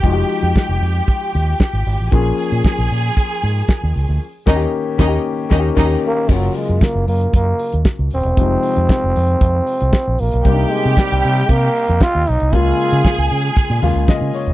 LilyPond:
<<
  \new Staff \with { instrumentName = "String section" } { \time 4/4 \key f \minor \tempo 4 = 115 <g' g''>1 | <aes' aes''>1 | r8 <ees' ees''>8 r8 <ees' ees''>8 r8 <ees' ees''>8 <ees' ees''>8 r8 | r1 |
r1 | <g' g''>2.~ <g' g''>8 r8 | <aes' aes''>2.~ <aes' aes''>8 r8 | }
  \new Staff \with { instrumentName = "Grand piano" } { \time 4/4 \key f \minor r1 | r1 | r1 | r1 |
r1 | r1 | r2 r8 f''8 ees''8 des''8 | }
  \new Staff \with { instrumentName = "Grand piano" } { \time 4/4 \key f \minor <f aes ees' ges' g'>1 | <f bes des' aes'>1 | r8 <ees bes des' g'>8 r8 <ees bes des' g'>8 r8 <ees bes des' g'>8 <ees bes des' g'>8 r8 | <des ges bes f'>1 |
<c f aes ees'>1 | <c g bes d' ees'>1 | <des aes bes f'>2~ <des aes bes f'>8 <des aes bes f'>4. | }
  \new Staff \with { instrumentName = "Trombone" } { \time 4/4 \key f \minor r1 | r1 | r2. r8 bes8 | ges8 aes8 bes8 bes8 bes4 r8 c'8~ |
c'2.~ c'8 bes8~ | bes8 aes8 g4 bes4 f'8 ees'8 | f'4. r2 r8 | }
  \new Staff \with { instrumentName = "Fingered electric bass" } { \clef bass \time 4/4 \key f \minor f,,8 r16 f,16 r16 f,,16 f,8 r8 ees,8 r16 aes,,16 aes,,16 a,,16 | bes,,8 r16 bes,16 r16 bes,,16 bes,8 r8 aes,8 r16 ees,16 des,16 d,16 | r8 ees,8 r8 ees,8 r8 ees,8 ees,8 r8 | ges,,8 r16 ges,16 r16 ges,,16 ges,8 ges,8 r16 ees,16 r16 des,16 ees,,16 e,,16 |
f,,8 r16 f,16 r16 f,,16 f,8 f,8 r16 c,16 r16 bes,,16 bes,,16 b,,16 | c,8 r16 c16 r16 c,16 c8 c8 r16 f,16 r16 ees,16 b,,16 c,16 | des,8 r16 des16 r16 des,16 des8 r16 bes,16 ees,16 des,16 r16 des16 r16 e,,16 | }
  \new DrumStaff \with { instrumentName = "Drums" } \drummode { \time 4/4 <hh bd>8 hho8 <hh bd sn>8 hho8 <hh bd>8 hho8 <hh bd sn>8 hho8 | <hh bd>8 hho8 <hh bd sn>8 hho8 <hh bd>8 hho8 <hh bd sn>8 hho8 | r8 <cymc bd sn>8 r8 <bd sn>8 r8 <bd sn>8 <cymc bd sn>4 | <cymc bd>8 hho16 hh16 <hh bd sn>8 hho16 hh16 <hh bd>8 hho16 hh16 <hh bd sn>8 hho16 hh16 |
<hh bd>8 hho16 hh16 <hh bd sn>8 hho16 hh16 <hh bd>8 hho16 hh16 <hh bd sn>8 hho16 hh16 | <hh bd>8 hho16 hh16 <hh bd sn>8 hho16 hh16 <hh bd>8 hho16 hh16 <hh bd sn>8 hho16 hh16 | <hh bd>8 hho16 hh16 <hh bd sn>8 hho16 hh16 <hh bd>8 hho16 hh16 <hh bd sn>8 hho16 hh16 | }
>>